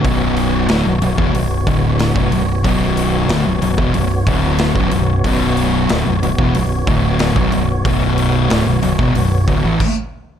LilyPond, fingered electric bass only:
\new Staff \with { instrumentName = "Fingered electric bass" } { \clef bass \time 4/4 \key b \minor \tempo 4 = 92 b,,,4 d,,16 b,,,16 b,,,16 e,,16 b,,,8 d,,8. b,,,16 b,,,8 | b,,,4 d,,16 b,,,16 b,,,16 e,,16 b,,,8 d,,8. b,,,16 b,,,8 | b,,,4 d,,16 b,,,16 b,,,16 e,,16 b,,,8 d,,8. b,,,16 b,,,8 | b,,,4 d,,16 b,,,16 b,,,16 e,,16 b,,,8 d,,16 a,,16 r4 | }